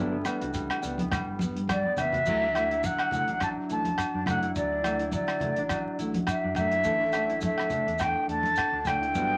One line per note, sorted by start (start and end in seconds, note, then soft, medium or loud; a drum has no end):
0.00 0.24 G1 loud
0.00 0.15 F#3 medium
0.00 0.23 G3 medium
0.00 3.01 A3 medium
0.00 0.16 B3 medium
0.00 0.16 D4 medium
0.00 2.36 D4 medium
0.00 2.45 E4 medium
0.12 0.98 B3 medium
0.25 0.53 G3 medium
0.25 0.45 B3 medium
0.25 0.44 D4 medium
0.25 cross-stick medium
0.25 closed hi-hat medium
0.25 low agogo medium
0.25 maracas medium
0.41 0.68 C#2 medium
0.41 0.60 F#4 medium
0.41 closed hi-hat medium
0.54 0.81 G3 medium
0.54 kick medium
0.54 closed hi-hat medium
0.54 maracas medium
0.70 cross-stick medium
0.70 low agogo medium
0.82 1.10 C#2 medium
0.82 1.11 G3 medium
0.82 1.02 B3 soft
0.82 1.01 D4 medium
0.82 closed hi-hat medium
0.82 maracas medium
0.98 1.85 B3 medium
0.98 closed hi-hat medium
0.98 high conga medium
0.98 maracas soft
1.11 1.97 G3 medium
1.11 kick medium
1.11 cross-stick medium
1.11 closed hi-hat medium
1.11 low conga medium
1.11 low agogo medium
1.11 maracas medium
1.27 1.54 G1 medium
1.39 muted clean electric guitar stroke medium
1.39 closed hi-hat soft
1.39 high conga medium
1.39 maracas medium
1.43 1.60 B3 soft
1.55 1.82 G2 medium
1.55 closed hi-hat soft
1.68 kick medium
1.68 cross-stick medium
1.68 closed hi-hat soft
1.68 high conga soft
1.68 low agogo medium
1.68 maracas medium
1.72 2.01 D5 medium
1.83 4.96 B3 medium
1.83 high conga medium
1.97 2.25 A1 medium
1.97 2.31 G3 medium
1.97 2.16 D4 medium
1.97 2.87 E5 loud
1.97 closed hi-hat soft
1.97 low conga medium
1.97 low agogo medium
1.97 maracas medium
2.01 2.17 B3 soft
2.13 4.56 F#4 medium
2.13 closed hi-hat soft
2.13 low conga medium
2.26 2.80 D2 medium
2.26 2.53 F#3 medium
2.26 2.45 F#3 medium
2.26 2.45 A3 medium
2.26 2.45 E4 medium
2.26 kick medium
2.26 crash medium
2.26 maracas medium
2.41 3.28 D4 medium
2.54 2.82 F#3 medium
2.54 2.74 A3 soft
2.54 2.73 E4 medium
2.54 cross-stick medium
2.54 closed hi-hat soft
2.54 low agogo medium
2.70 4.42 E4 medium
2.70 closed hi-hat soft
2.83 3.25 D3 medium
2.83 3.11 F#3 medium
2.83 3.42 F#5 medium
2.83 kick medium
2.83 closed hi-hat medium
2.83 high conga medium
2.83 maracas loud
2.99 cross-stick medium
2.99 low agogo medium
3.11 3.40 F#3 medium
3.11 3.32 A3 soft
3.11 3.30 E4 medium
3.11 closed hi-hat soft
3.11 low conga medium
3.11 maracas medium
3.28 3.55 A1 medium
3.28 4.14 D4 medium
3.28 closed hi-hat soft
3.40 4.26 F#3 medium
3.40 3.49 A5 loud
3.40 kick medium
3.40 cross-stick medium
3.40 closed hi-hat soft
3.40 low agogo medium
3.40 maracas medium
3.68 3.97 A1 medium
3.68 3.88 A3 soft
3.68 3.87 E4 soft
3.68 4.24 A5 medium
3.68 closed hi-hat soft
3.68 maracas medium
3.85 closed hi-hat medium
3.85 high conga medium
3.98 kick medium
3.98 cross-stick medium
3.98 closed hi-hat soft
3.98 low agogo medium
3.98 maracas medium
4.14 4.53 F#2 medium
4.14 4.72 D4 medium
4.26 4.55 F#3 medium
4.26 4.46 A3 soft
4.26 4.44 E4 soft
4.26 4.54 F#5 medium
4.26 cross-stick medium
4.26 closed hi-hat soft
4.26 high conga medium
4.26 low conga medium
4.26 low agogo medium
4.26 maracas medium
4.42 5.00 E4 medium
4.42 closed hi-hat soft
4.56 5.09 D2 loud
4.56 4.83 F#3 medium
4.56 5.09 D5 medium
4.56 kick medium
4.56 closed hi-hat soft
4.56 maracas medium
4.72 5.58 D4 medium
4.82 5.11 F#3 medium
4.82 5.03 A3 soft
4.82 5.01 E4 medium
4.82 cross-stick medium
4.82 closed hi-hat soft
4.82 low agogo medium
4.82 maracas medium
4.99 6.71 E4 medium
4.99 closed hi-hat soft
5.12 5.54 D3 medium
5.12 5.40 F#3 medium
5.12 5.97 D5 medium
5.12 kick medium
5.12 closed hi-hat medium
5.12 high conga medium
5.12 maracas medium
5.28 cross-stick medium
5.28 low agogo medium
5.40 5.69 F#3 medium
5.40 5.61 A3 soft
5.40 5.59 E4 medium
5.40 closed hi-hat medium
5.40 low conga medium
5.56 5.84 A1 medium
5.56 6.43 D4 medium
5.56 closed hi-hat soft
5.69 6.56 F#3 medium
5.69 kick medium
5.69 cross-stick medium
5.69 closed hi-hat soft
5.69 low agogo medium
5.69 maracas medium
5.99 6.26 A1 medium
5.99 6.18 A3 soft
5.99 6.17 E4 medium
5.99 closed hi-hat soft
5.99 maracas medium
6.14 closed hi-hat soft
6.14 high conga medium
6.27 6.56 E5 medium
6.27 kick medium
6.27 cross-stick medium
6.27 closed hi-hat soft
6.27 low agogo medium
6.27 maracas medium
6.44 6.83 F#2 medium
6.44 6.99 D4 medium
6.55 6.90 F#3 medium
6.55 7.39 E5 medium
6.55 muted clean electric guitar stroke soft
6.55 closed hi-hat soft
6.55 high conga medium
6.55 low conga medium
6.55 low agogo medium
6.55 maracas medium
6.59 6.76 A3 soft
6.71 7.28 E4 medium
6.71 closed hi-hat soft
6.84 7.39 A1 loud
6.84 7.03 E3 medium
6.84 7.13 A3 medium
6.84 7.03 A3 medium
6.84 7.04 A4 medium
6.84 muted clean electric guitar stroke medium
6.84 kick medium
6.84 closed hi-hat soft
6.84 maracas medium
7.00 7.86 D4 medium
7.13 7.42 A3 medium
7.13 7.33 A3 soft
7.13 7.33 D4 soft
7.13 7.32 A4 medium
7.13 cross-stick medium
7.13 closed hi-hat soft
7.13 low agogo medium
7.13 maracas medium
7.29 9.01 E4 medium
7.29 closed hi-hat soft
7.41 7.84 A2 medium
7.41 7.70 A3 medium
7.41 kick medium
7.41 closed hi-hat soft
7.41 high conga medium
7.41 maracas loud
7.45 8.03 E5 medium
7.58 cross-stick medium
7.58 low agogo medium
7.70 7.99 A3 medium
7.70 7.90 D4 soft
7.70 7.89 A4 medium
7.70 closed hi-hat soft
7.70 low conga medium
7.70 maracas medium
7.74 7.91 A3 soft
7.87 8.13 E2 medium
7.87 8.72 D4 medium
7.87 closed hi-hat soft
7.98 9.38 A3 medium
7.98 8.30 G5 medium
7.98 kick medium
7.98 cross-stick medium
7.98 closed hi-hat soft
7.98 low agogo medium
7.98 maracas medium
8.28 8.55 E2 medium
8.28 8.48 A3 soft
8.28 8.47 D4 soft
8.28 8.47 A4 medium
8.28 8.88 A5 loud
8.28 closed hi-hat soft
8.43 closed hi-hat soft
8.43 high conga medium
8.56 kick medium
8.56 cross-stick medium
8.56 closed hi-hat soft
8.56 low agogo medium
8.56 maracas loud
8.72 9.12 D2 medium
8.72 9.38 D4 medium
8.85 9.05 D4 medium
8.85 9.04 A4 soft
8.85 9.38 G5 medium
8.85 cross-stick medium
8.85 closed hi-hat soft
8.85 high conga medium
8.85 low conga medium
8.85 low agogo medium
8.85 maracas medium
8.89 9.06 A3 soft
9.01 9.38 E4 medium
9.01 closed hi-hat soft
9.14 9.38 G1 loud
9.14 9.33 F#3 medium
9.14 9.38 G3 medium
9.14 9.33 B3 medium
9.14 9.34 D4 medium
9.14 9.34 F#4 medium
9.14 kick medium
9.14 closed hi-hat soft
9.14 maracas medium
9.29 9.38 B3 medium